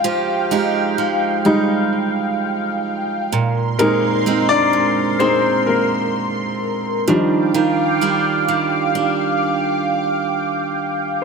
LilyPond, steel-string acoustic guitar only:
\new Staff \with { instrumentName = "Steel-string acoustic guitar" } { \time 4/4 \key ees \major \tempo 4 = 64 <f aes ees' g'>8 <aes ees' g'>8 aes8 ees'2 bes,8 | <bes, ees'>8 <aes c' ees'>8 aes8 c'2 ees8 | <ees f'>8 <g d' f'>8 g8 d'2~ d'8 | }